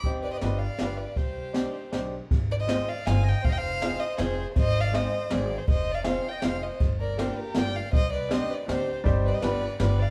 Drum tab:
RD |x-x-x-|x-x-x-|x-x-x-|x-x-x-|
SD |--o-o-|--o-o-|--o-o-|--o-o-|
BD |o-----|o-----|o-----|o-----|

RD |x-x-x-|x-x-x-|x-x-x-|x-x-x-|
SD |--o-o-|--o-o-|--o-o-|--o-o-|
BD |o-----|o-----|o-----|o-----|

RD |x-x-x-|
SD |--o-o-|
BD |o-----|